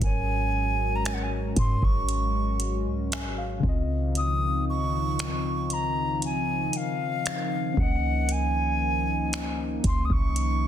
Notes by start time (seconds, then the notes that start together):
Already playing: G#2 C#4
0.01 G#1 F#3 G#3 F#4 A#4 G#5, kick, closed hi-hat
0.06 C#5
0.95 A#5
1.05 G#5, finger snap, closed hi-hat
1.14 F#5
1.23 G#5
1.56 G#2 C6, kick, closed hi-hat
1.82 G#1 C#6, kick
2.09 closed hi-hat
2.60 closed hi-hat
2.86 C2
3.12 G#5, finger snap, closed hi-hat
3.24 G#1
3.38 F5
3.60 C#2 C#3 D#3 F3 C4 D#4, kick
3.65 F4 D#5
4.15 D#6, closed hi-hat
4.69 C#6
5.19 finger snap, closed hi-hat
5.70 A#5, closed hi-hat
6.22 G#5, closed hi-hat
6.73 F5, closed hi-hat
7.26 finger snap, closed hi-hat
7.74 C#2 A#3 C#4 D#4, kick
7.79 F3 D#5 F#5
8.29 G#5, closed hi-hat
9.33 finger snap, closed hi-hat
9.84 C#2 C6, kick, closed hi-hat
10.05 D#6
10.10 C2 C#6, kick
10.36 closed hi-hat